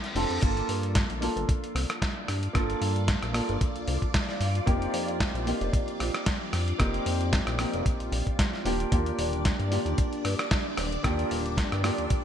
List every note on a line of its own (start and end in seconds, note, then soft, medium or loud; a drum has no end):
0.00 0.13 C4 medium
0.00 0.14 D4 medium
0.00 0.14 F4 medium
0.00 0.14 A4 medium
0.00 snare soft
0.00 closed hi-hat soft
0.00 reverse cymbal medium
0.15 0.26 F1 medium
0.15 0.39 C4 medium
0.15 0.40 D4 medium
0.15 0.40 F4 medium
0.15 0.40 A4 medium
0.15 open hi-hat medium
0.30 0.39 F2 medium
0.30 closed hi-hat soft
0.41 0.63 G1 loud
0.41 1.19 A#3 medium
0.41 1.19 D4 medium
0.41 8.93 F4 medium
0.41 1.19 F4 medium
0.41 1.20 A4 medium
0.41 8.91 D5 medium
0.41 kick loud
0.41 closed hi-hat medium
0.41 crash medium
0.57 closed hi-hat soft
0.69 1.04 G2 medium
0.69 open hi-hat loud
0.83 closed hi-hat soft
0.95 kick loud
0.95 snare loud
0.95 closed hi-hat medium
1.10 1.29 A#1 medium
1.10 closed hi-hat soft
1.21 2.51 A#3 medium
1.21 2.52 D4 medium
1.21 2.52 F4 medium
1.21 2.52 A4 medium
1.21 open hi-hat medium
1.36 1.45 G1 loud
1.36 closed hi-hat soft
1.49 kick loud
1.49 closed hi-hat medium
1.64 closed hi-hat soft
1.75 1.86 C2 medium
1.75 cross-stick medium
1.75 open hi-hat loud
1.90 cross-stick medium
1.90 closed hi-hat soft
2.02 kick loud
2.02 snare loud
2.02 closed hi-hat medium
2.28 2.48 G2 medium
2.28 cross-stick medium
2.28 open hi-hat medium
2.43 closed hi-hat soft
2.53 2.75 G1 loud
2.53 3.31 A#3 medium
2.53 3.31 D4 medium
2.53 3.32 F4 medium
2.53 3.32 A4 medium
2.53 kick loud
2.53 cross-stick medium
2.53 closed hi-hat medium
2.70 closed hi-hat soft
2.81 3.16 G2 medium
2.81 open hi-hat loud
2.96 closed hi-hat soft
3.08 kick loud
3.08 snare loud
3.08 closed hi-hat medium
3.23 3.42 A#1 medium
3.23 cross-stick medium
3.23 closed hi-hat soft
3.33 4.64 A#3 medium
3.33 4.64 D4 medium
3.33 4.64 F4 medium
3.33 4.65 A4 medium
3.33 cross-stick medium
3.33 open hi-hat medium
3.49 3.58 G1 loud
3.49 closed hi-hat soft
3.61 kick loud
3.61 closed hi-hat medium
3.76 3.85 C2 soft
3.76 closed hi-hat soft
3.88 3.98 C2 medium
3.88 open hi-hat loud
4.02 kick medium
4.02 closed hi-hat soft
4.14 kick loud
4.14 snare loud
4.14 closed hi-hat medium
4.29 snare soft
4.40 4.61 G2 medium
4.40 open hi-hat medium
4.55 closed hi-hat soft
4.66 4.87 F1 loud
4.66 5.43 A#3 medium
4.66 5.44 C4 medium
4.66 5.44 D#4 medium
4.66 5.44 G4 loud
4.66 kick loud
4.66 closed hi-hat medium
4.82 closed hi-hat soft
4.94 5.29 F2 medium
4.94 open hi-hat loud
5.08 closed hi-hat soft
5.20 kick loud
5.20 snare loud
5.20 closed hi-hat medium
5.34 5.53 A#1 medium
5.34 closed hi-hat soft
5.46 6.76 A#3 medium
5.46 6.77 C4 medium
5.46 6.77 D#4 medium
5.46 6.77 G4 medium
5.46 open hi-hat medium
5.61 5.70 F1 loud
5.61 closed hi-hat soft
5.73 kick loud
5.73 closed hi-hat medium
5.88 closed hi-hat soft
6.00 6.11 A#1 medium
6.00 cross-stick medium
6.00 open hi-hat loud
6.14 cross-stick medium
6.14 closed hi-hat soft
6.26 kick loud
6.26 snare loud
6.26 closed hi-hat medium
6.53 6.73 F2 medium
6.53 cross-stick medium
6.53 open hi-hat medium
6.68 closed hi-hat soft
6.78 7.00 F1 loud
6.78 7.56 A#3 medium
6.78 7.56 C4 medium
6.78 7.56 D#4 medium
6.78 7.57 G4 medium
6.78 kick loud
6.78 cross-stick medium
6.78 closed hi-hat medium
6.94 closed hi-hat soft
7.06 7.41 F2 medium
7.06 open hi-hat loud
7.21 closed hi-hat soft
7.33 kick loud
7.33 snare loud
7.33 closed hi-hat medium
7.47 7.66 A#1 medium
7.47 cross-stick medium
7.47 closed hi-hat soft
7.58 8.63 A#3 medium
7.58 8.63 C4 medium
7.58 8.63 D#4 medium
7.58 8.64 G4 medium
7.58 cross-stick medium
7.58 open hi-hat medium
7.74 7.83 F1 loud
7.74 closed hi-hat soft
7.86 kick loud
7.86 closed hi-hat medium
8.00 8.10 A#1 soft
8.00 closed hi-hat soft
8.12 8.23 A#1 medium
8.12 open hi-hat loud
8.27 kick medium
8.27 closed hi-hat soft
8.39 kick loud
8.39 snare loud
8.39 closed hi-hat medium
8.53 snare soft
8.65 8.86 D#1 medium
8.65 8.89 A#3 medium
8.65 8.89 D4 medium
8.65 8.89 F4 medium
8.65 8.89 G4 medium
8.65 open hi-hat medium
8.80 closed hi-hat soft
8.91 9.12 D#2 loud
8.91 9.68 A#3 medium
8.91 9.69 D4 medium
8.91 12.24 D4 medium
8.91 9.69 F4 medium
8.91 9.69 G4 loud
8.91 12.24 D5 medium
8.91 kick loud
8.91 closed hi-hat medium
9.06 closed hi-hat soft
9.18 9.53 D#1 medium
9.18 open hi-hat loud
9.33 closed hi-hat soft
9.45 kick loud
9.45 snare loud
9.45 closed hi-hat medium
9.60 9.78 G2 medium
9.60 closed hi-hat soft
9.71 11.01 A#3 medium
9.71 11.01 D4 medium
9.71 11.02 F4 medium
9.71 11.02 G4 medium
9.71 open hi-hat medium
9.85 9.95 D#2 medium
9.85 closed hi-hat soft
9.98 kick loud
9.98 closed hi-hat medium
10.13 closed hi-hat soft
10.25 10.35 G2 medium
10.25 cross-stick medium
10.25 open hi-hat loud
10.39 cross-stick medium
10.39 closed hi-hat soft
10.51 kick loud
10.51 snare loud
10.51 closed hi-hat medium
10.77 10.98 D#1 medium
10.77 cross-stick medium
10.77 open hi-hat medium
10.92 closed hi-hat soft
11.03 11.24 D#2 loud
11.03 11.81 A#3 medium
11.03 11.81 D4 medium
11.03 11.81 F4 medium
11.03 11.82 G4 loud
11.03 kick loud
11.03 cross-stick medium
11.03 closed hi-hat medium
11.19 closed hi-hat soft
11.31 11.66 D#1 medium
11.31 open hi-hat loud
11.46 closed hi-hat soft
11.58 kick loud
11.58 snare loud
11.58 closed hi-hat medium
11.72 11.91 G2 medium
11.72 cross-stick medium
11.72 closed hi-hat soft
11.82 12.24 A#3 medium
11.82 12.24 D4 medium
11.82 12.24 F4 medium
11.82 12.24 G4 medium
11.82 cross-stick medium
11.82 open hi-hat medium
11.98 12.07 D#2 loud
11.98 closed hi-hat soft
12.10 kick loud
12.10 closed hi-hat medium